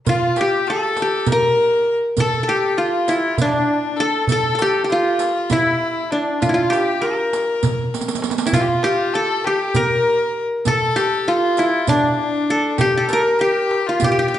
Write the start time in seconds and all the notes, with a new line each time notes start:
0.06 F4, riq, darbuka dum
0.36 G4, riq, darbuka tek
0.41 G4
0.67 A4, riq
0.96 riq, darbuka tek
1.02 G4
1.26 A#4, riq, darbuka dum
1.32 A#4
2.17 A4, riq, darbuka dum
2.43 A4
2.48 G4
2.77 F4, riq, darbuka ka
3.08 E4, riq, darbuka tek
3.36 D4, riq, darbuka dum
3.42 D4
3.97 A4
4.28 A4, riq, darbuka dum
4.32 A4
4.55 A4, riq, darbuka tek
4.62 G4
4.84 G4
4.89 F4, riq, darbuka ka
5.19 riq, darbuka tek
5.50 E4, riq, darbuka dum
6.11 D4
6.40 F4, riq, darbuka dum
6.49 E4 F4
6.54 F4
6.70 G4, riq, darbuka tek
7.01 A#4, riq, darbuka ka
7.33 riq, darbuka tek
7.63 riq, darbuka dum
7.94 riq, darbuka tek
8.01 riq, darbuka ka
8.08 riq, darbuka tek
8.15 riq, darbuka ka
8.22 riq, darbuka tek
8.30 riq, darbuka ka
8.38 riq, darbuka tek
8.46 E4, riq, darbuka ka
8.53 F4, riq, darbuka dum
8.61 G4
8.68 F4
8.83 G4, riq, darbuka tek
9.14 A4, riq, darbuka ka
9.44 G4, darbuka tek
9.75 A#4, riq, darbuka dum
10.65 A4, riq, darbuka dum
10.96 G4, riq, darbuka tek
11.27 F4, riq, darbuka ka
11.57 E4, riq, darbuka tek
11.87 D4, riq, darbuka dum
12.50 A4
12.78 G4, riq, darbuka dum
12.97 A4
13.09 A#4, riq, darbuka tek
13.13 A#4
13.39 G4, riq, darbuka ka
13.71 darbuka tek
13.86 F4
14.00 G4, riq, darbuka dum
14.04 G4
14.12 G4
14.19 G4
14.28 G4
14.34 G4